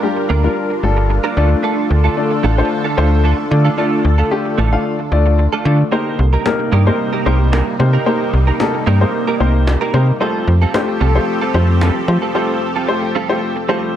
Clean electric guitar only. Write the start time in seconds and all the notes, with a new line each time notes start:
0.02 muted clean electric guitar stroke
0.17 muted clean electric guitar stroke
0.29 A#3 D4 F4 A#4
0.43 A#3 D4 F4 A#4
0.56 muted clean electric guitar stroke
0.70 muted clean electric guitar stroke
0.97 muted clean electric guitar stroke
1.10 muted clean electric guitar stroke
1.24 A#3 D4 F4 A#4
1.36 A3 D4 F4 A4
1.51 muted clean electric guitar stroke
1.63 A3 D4 F4 A4
1.90 muted clean electric guitar stroke
2.04 A3 D4 F4 A4
2.17 muted clean electric guitar stroke
2.31 muted clean electric guitar stroke
2.43 A3 D4 F4 A4
2.57 A3 D4 F4 A4
2.70 muted clean electric guitar stroke
2.84 A3 D4 F4 A4
2.97 A3 D4 F4 A4
3.11 muted clean electric guitar stroke
3.24 A3 D4 F4 A4
3.38 muted clean electric guitar stroke
3.51 muted clean electric guitar stroke
3.65 A3 D4 F4 A4
3.77 A3 D4 F4 A4
4.04 muted clean electric guitar stroke
4.18 A3 D4 F4 A4
4.31 muted clean electric guitar stroke
4.45 muted clean electric guitar stroke
4.58 A3 D4 F4 A4
4.72 A3 D4 F4 A4
4.85 muted clean electric guitar stroke
4.99 muted clean electric guitar stroke
5.26 muted clean electric guitar stroke
5.38 muted clean electric guitar stroke
5.53 A3 D4 F4 A4
5.65 A3 D4 F4 A4
5.79 muted clean electric guitar stroke
5.92 A#3 D#4 G4 A#4
6.19 muted clean electric guitar stroke
6.33 A#3 D#4 G4 A#4
6.45 muted clean electric guitar stroke
6.59 muted clean electric guitar stroke
6.72 A#3 D#4 G4 A#4
6.86 A#3 D#4 G4 A#4
6.99 muted clean electric guitar stroke
7.13 A#3 D#4 G4 A#4
7.25 A#3 D#4 G4 A#4
7.40 muted clean electric guitar stroke
7.52 A#3 D#4 G4 A#4
7.66 muted clean electric guitar stroke
7.79 muted clean electric guitar stroke
7.93 A#3 D#4 G4 A#4
8.06 A#3 D#4 G4 A#4
8.47 A#3 D#4 G4 A#4
8.60 muted clean electric guitar stroke
8.74 muted clean electric guitar stroke
8.86 A#3 D#4 G4 A#4
9.01 A#3 D#4 G4 A#4
9.13 muted clean electric guitar stroke
9.27 A#3 D#4 G4 A#4
9.40 A#3 D#4 G4 A#4
9.54 muted clean electric guitar stroke
9.67 muted clean electric guitar stroke
9.81 A#3 D#4 G4 A#4
9.94 A#3 D#4 G4 A#4
10.20 G3 C4 F4 A4
10.47 muted clean electric guitar stroke
10.62 G3 C4 F4 A4
10.88 muted clean electric guitar stroke
11.00 G3 C4 F4 A4
11.15 G3 C4 F4 A4
11.27 muted clean electric guitar stroke
11.41 G3 C4 F4 A4
11.54 G3 C4 F4 A4
11.69 muted clean electric guitar stroke
11.81 G3 C4 F4 A4
11.95 muted clean electric guitar stroke
12.08 muted clean electric guitar stroke
12.22 G3 C4 F4 A4
12.34 G3 C4 F4 A4
12.61 muted clean electric guitar stroke
12.76 G3 C4 F4 A4
12.88 muted clean electric guitar stroke
13.03 muted clean electric guitar stroke
13.15 G3 C4 F4 A4
13.29 G3 C4 F4 A4
13.42 muted clean electric guitar stroke
13.56 muted clean electric guitar stroke
13.69 G3 C4 F4 A4
13.83 muted clean electric guitar stroke